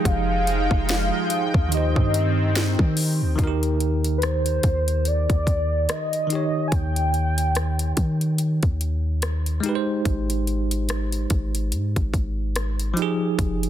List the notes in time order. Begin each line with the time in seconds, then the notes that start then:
Already playing: F3 G#3 D#4 G4 G#4 G5
0.05 F1 F5, kick, closed hi-hat
0.47 closed hi-hat
0.71 F1, kick
0.89 snare, closed hi-hat
1.30 closed hi-hat
1.54 D#2, kick
1.69 D#3 C4 D#4, closed hi-hat
1.74 G4 C5 D#5
1.96 G2, kick
2.14 closed hi-hat
2.56 snare, closed hi-hat
2.79 D#3, kick
2.97 open hi-hat
3.21 D2
3.35 D#2 D#3 D#4, kick, closed hi-hat
3.41 F#4 A#4
3.47 G4
3.63 closed hi-hat
3.80 closed hi-hat
4.04 closed hi-hat
4.18 B4
4.22 C5, cross-stick, closed hi-hat
4.46 closed hi-hat
4.63 D#2, kick, closed hi-hat
4.88 closed hi-hat
5.05 D5, closed hi-hat
5.30 D#2, kick, closed hi-hat
5.47 D#2, kick, closed hi-hat
5.89 D#5, cross-stick, closed hi-hat
6.13 closed hi-hat
6.27 D#3 D#4, closed hi-hat
6.33 G4 C#5
6.68 G#5
6.72 D#2 G5, kick, closed hi-hat
6.96 closed hi-hat
7.14 closed hi-hat
7.38 closed hi-hat
7.55 cross-stick, closed hi-hat
7.79 closed hi-hat
7.97 D#3, kick, closed hi-hat
8.21 closed hi-hat
8.38 closed hi-hat
8.63 D#2, kick, closed hi-hat
8.81 closed hi-hat
9.22 cross-stick, closed hi-hat
9.46 closed hi-hat
9.60 G#3 D#4, closed hi-hat
9.66 G4 B4
9.75 C5
10.05 G#1, kick, closed hi-hat
10.30 closed hi-hat
10.47 closed hi-hat
10.71 closed hi-hat
10.89 cross-stick, closed hi-hat
11.12 closed hi-hat
11.30 G#1, kick, closed hi-hat
11.55 closed hi-hat
11.72 G#2, closed hi-hat
11.96 G#1, kick, closed hi-hat
12.13 G#1, kick, closed hi-hat
12.56 cross-stick, closed hi-hat
12.80 closed hi-hat
12.94 F3 D#4, closed hi-hat
12.99 G4 G#4
13.39 F1, kick, closed hi-hat
13.63 closed hi-hat